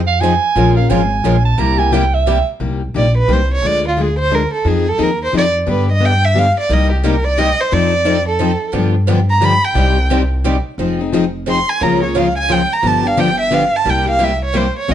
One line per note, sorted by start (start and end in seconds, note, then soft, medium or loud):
0.00 0.36 F2 medium
0.07 0.22 F5 loud
0.20 0.32 F3 medium
0.20 0.33 C4 medium
0.20 0.33 D#4 medium
0.20 0.33 G#4 loud
0.20 0.76 G#5 loud
0.55 0.83 A#1 loud
0.55 0.76 F3 medium
0.55 0.76 G#3 medium
0.55 0.76 C#4 medium
0.55 0.76 F4 medium
0.55 0.75 A#4 medium
0.76 0.89 C#4 medium
0.76 0.89 F4 medium
0.76 0.90 A#4 medium
0.76 0.91 F5 medium
0.90 1.19 G#1 medium
0.90 1.01 F3 loud
0.90 1.01 G#3 loud
0.90 1.01 C#4 medium
0.90 1.01 F4 loud
0.90 1.01 A#4 loud
0.90 1.45 G#5 medium
1.24 1.53 A#1 medium
1.24 1.35 F3 medium
1.24 1.35 G#3 medium
1.24 1.35 C#4 medium
1.24 1.36 F4 loud
1.24 1.36 A#4 loud
1.45 1.60 A5 medium
1.58 2.40 C2 loud
1.58 1.78 C3 medium
1.58 1.78 G3 medium
1.58 1.78 A#3 medium
1.58 1.78 E4 medium
1.58 1.77 G4 medium
1.58 1.80 A#5 loud
1.78 1.91 A#3 medium
1.78 1.92 E4 medium
1.78 1.92 G4 medium
1.78 1.94 G#5 loud
1.92 2.03 C3 medium
1.92 2.03 G3 medium
1.92 2.03 A#3 loud
1.92 2.03 E4 loud
1.92 2.03 G4 loud
1.92 2.16 G5 loud
2.14 2.48 E5 loud
2.26 2.37 C3 medium
2.26 2.38 G3 medium
2.26 2.38 A#3 loud
2.26 2.38 E4 medium
2.26 2.38 G4 loud
2.60 2.87 C2 medium
2.60 2.81 C3 medium
2.60 2.81 G3 medium
2.60 2.81 A#3 medium
2.60 2.81 D#4 medium
2.60 2.81 G4 medium
2.94 3.24 A#1 medium
2.94 3.05 C3 medium
2.94 3.06 G3 medium
2.94 3.06 A#3 medium
2.94 3.06 D#4 medium
2.94 3.06 G4 medium
2.94 3.15 D5 medium
3.18 3.34 B4 loud
3.28 3.57 C2 medium
3.28 3.39 C3 medium
3.28 3.39 G3 medium
3.28 3.40 A#3 medium
3.28 3.40 D#4 medium
3.28 3.40 G4 medium
3.33 3.51 C5 medium
3.53 3.68 C#5 medium
3.62 4.44 D2 medium
3.62 3.84 D3 medium
3.62 3.84 G#3 medium
3.62 3.84 D4 medium
3.62 3.84 F4 medium
3.66 3.85 D5 loud
3.88 4.02 F4 medium
3.97 4.08 D3 medium
3.97 4.08 G#3 medium
3.97 4.08 D4 medium
3.97 4.08 F4 medium
3.97 4.18 G#4 medium
4.19 4.36 C5 loud
4.31 4.42 D3 medium
4.31 4.42 G#3 medium
4.31 4.42 D4 loud
4.31 4.42 F4 loud
4.31 4.53 A#4 medium
4.54 4.69 A4 medium
4.65 4.92 F2 medium
4.65 4.85 F3 medium
4.65 4.86 C4 medium
4.65 4.86 D#4 medium
4.65 4.86 G#4 medium
4.65 4.90 G#4 medium
4.88 5.05 A4 medium
4.98 5.28 D#2 medium
4.98 5.09 F3 medium
4.98 5.09 C4 loud
4.98 5.10 D#4 medium
4.98 5.10 G#4 loud
5.03 5.22 A#4 medium
5.24 5.35 C5 medium
5.33 5.62 F2 medium
5.33 5.44 F3 medium
5.33 5.44 C4 medium
5.33 5.45 D#4 medium
5.33 5.45 G#4 medium
5.37 5.48 D5 loud
5.66 6.49 G2 medium
5.66 5.87 D3 medium
5.66 5.87 G3 medium
5.66 5.87 B3 medium
5.66 5.88 D4 medium
5.66 5.88 G4 medium
5.66 5.88 B4 medium
5.92 6.07 D#5 medium
6.00 6.12 D3 medium
6.00 6.12 G3 medium
6.00 6.12 B3 medium
6.00 6.12 D4 medium
6.00 6.12 G4 medium
6.05 6.26 G5 loud
6.25 6.40 E5 loud
6.35 6.46 D3 medium
6.35 6.46 G3 medium
6.35 6.46 B3 medium
6.35 6.46 D4 medium
6.35 6.46 G4 medium
6.35 6.57 F5 loud
6.60 6.75 D5 medium
6.69 7.51 C2 medium
6.69 6.90 C3 medium
6.69 6.90 G3 medium
6.69 6.90 A#3 medium
6.69 6.91 D#4 medium
6.69 6.90 G4 medium
6.69 6.92 D#5 medium
6.92 7.07 G4 soft
7.04 7.14 C3 medium
7.04 7.15 G3 medium
7.04 7.15 A#3 loud
7.04 7.15 D#4 medium
7.04 7.15 G4 medium
7.04 7.26 A#4 medium
7.24 7.40 D5 medium
7.37 7.48 C3 medium
7.37 7.48 G3 medium
7.37 7.49 A#3 medium
7.37 7.49 D#4 medium
7.37 7.49 G4 medium
7.37 7.62 D#5 loud
7.60 7.75 C5 medium
7.72 8.54 F2 loud
7.72 7.92 F3 medium
7.72 7.92 C4 medium
7.72 7.93 D#4 medium
7.72 7.93 A4 medium
7.72 8.27 D5 loud
8.05 8.16 F3 medium
8.05 8.16 C4 medium
8.05 8.16 D#4 loud
8.05 8.17 A4 medium
8.28 8.72 A4 medium
8.40 8.51 F3 medium
8.40 8.51 C4 medium
8.40 8.51 D#4 medium
8.40 8.52 A4 medium
8.73 9.55 G2 medium
8.73 8.94 D3 medium
8.73 8.95 F3 medium
8.73 8.95 B3 medium
8.73 8.95 D4 medium
8.73 8.95 G4 medium
9.07 9.19 D3 medium
9.07 9.19 F3 medium
9.07 9.19 B3 loud
9.07 9.19 D4 loud
9.07 9.20 G4 loud
9.30 9.46 A#5 loud
9.40 9.52 D3 medium
9.40 9.52 F3 loud
9.40 9.52 B3 medium
9.40 9.52 D4 medium
9.40 9.53 G4 medium
9.40 9.66 B5 loud
9.65 10.12 G5 loud
9.74 10.58 C2 loud
9.74 9.96 C3 medium
9.74 9.96 G3 medium
9.74 9.96 C4 medium
9.74 9.96 D#4 medium
9.74 9.96 G4 medium
9.74 9.97 D5 medium
10.10 10.21 C3 loud
10.10 10.21 G3 medium
10.10 10.22 C4 loud
10.10 10.22 D#4 loud
10.10 10.22 G4 loud
10.10 10.22 D5 medium
10.44 10.55 C3 medium
10.44 10.55 G3 medium
10.44 10.56 C4 medium
10.44 10.56 D#4 medium
10.44 10.56 G4 loud
10.44 10.56 D5 loud
10.78 11.60 F1 medium
10.78 10.99 F3 medium
10.78 10.99 C4 medium
10.78 10.99 D#4 medium
10.78 10.98 G#4 medium
10.99 11.12 C4 soft
10.99 11.13 D#4 medium
10.99 11.12 G#4 medium
11.13 11.24 F3 medium
11.13 11.24 C4 medium
11.13 11.24 D#4 medium
11.13 11.25 G#4 loud
11.46 11.58 F3 medium
11.46 11.58 C4 medium
11.46 11.58 D#4 medium
11.46 11.59 G#4 medium
11.46 11.71 C6 medium
11.69 11.84 G#5 loud
11.80 12.63 C#2 medium
11.80 12.02 C#3 medium
11.80 12.02 F3 medium
11.80 12.01 G#3 medium
11.80 12.02 A#3 medium
11.80 12.02 C#4 medium
11.80 12.02 F4 medium
11.80 12.01 G#4 medium
11.80 12.02 A#4 medium
11.80 12.03 A#5 medium
12.02 12.16 A#3 soft
12.02 12.16 F4 medium
12.02 12.15 G#4 medium
12.02 12.19 C#5 medium
12.15 12.27 C#3 medium
12.15 12.27 F3 medium
12.15 12.26 G#3 medium
12.15 12.27 A#3 loud
12.15 12.26 C#4 medium
12.15 12.28 F4 medium
12.15 12.28 G#4 loud
12.15 12.27 A#4 medium
12.15 12.37 F5 medium
12.38 12.53 G#5 loud
12.49 12.60 C#3 medium
12.49 12.61 F3 medium
12.49 12.60 G#3 medium
12.49 12.61 A#3 medium
12.49 12.60 C#4 medium
12.49 12.61 F4 medium
12.49 12.61 G#4 medium
12.49 12.61 A#4 loud
12.49 12.74 G5 loud
12.73 12.88 A#5 loud
12.82 13.66 G1 medium
12.82 13.03 D3 medium
12.82 13.03 F3 medium
12.82 13.04 B3 medium
12.82 13.03 D4 medium
12.82 13.02 G4 medium
12.87 13.08 A5 medium
13.03 13.16 B3 medium
13.03 13.17 D4 medium
13.03 13.17 G4 medium
13.03 13.21 F5 medium
13.17 13.29 D3 medium
13.17 13.29 F3 medium
13.17 13.29 B3 medium
13.17 13.29 D4 loud
13.17 13.29 G4 loud
13.17 13.40 G5 loud
13.40 13.56 E5 loud
13.51 13.63 D3 medium
13.51 13.63 F3 medium
13.51 13.63 B3 medium
13.51 13.63 D4 medium
13.51 13.63 G4 loud
13.51 13.78 F5 medium
13.76 13.91 A5 loud
13.85 14.68 C2 medium
13.85 14.06 C3 medium
13.85 14.06 G3 medium
13.85 14.06 A#3 medium
13.85 14.06 E4 medium
13.85 14.05 G4 medium
13.90 14.09 G5 medium
14.06 14.17 A#3 medium
14.06 14.18 E4 medium
14.06 14.19 G4 medium
14.06 14.25 F5 medium
14.19 14.31 C3 loud
14.19 14.31 G3 medium
14.19 14.31 A#3 loud
14.19 14.31 E4 loud
14.19 14.32 G4 medium
14.24 14.43 E5 medium
14.45 14.59 C#5 medium
14.54 14.66 C3 medium
14.54 14.66 G3 medium
14.54 14.66 A#3 medium
14.54 14.66 E4 medium
14.54 14.66 G4 loud
14.54 14.77 C5 medium
14.79 14.93 C#5 medium
14.88 14.94 C#2 medium
14.88 14.94 C#3 medium
14.88 14.94 G#3 medium
14.88 14.94 C4 medium
14.88 14.94 F4 medium
14.88 14.94 G#4 medium
14.88 14.94 D#5 medium